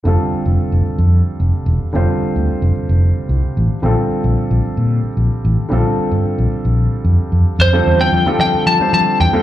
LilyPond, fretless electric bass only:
\new Staff \with { instrumentName = "Fretless electric bass" } { \clef bass \time 7/8 \key f \major \tempo 4 = 111 f,,16 r8 f,,16 r16 f,,16 r16 f,8 r16 f,,16 r16 e,,16 r16 | f,,16 r8 d,16 r16 f,,16 r16 f,,8 r16 c,16 r16 a,,16 r16 | bes,,16 r8 bes,,16 r16 bes,,16 r16 bes,8 r16 bes,,16 r16 a,,16 r16 | bes,,16 r8 g,16 r16 bes,,16 r16 bes,,8 r16 f,16 r16 f,16 r16 |
f,8 e,8 f16 r16 f16 r16 f16 r16 f16 r16 e,16 r16 | }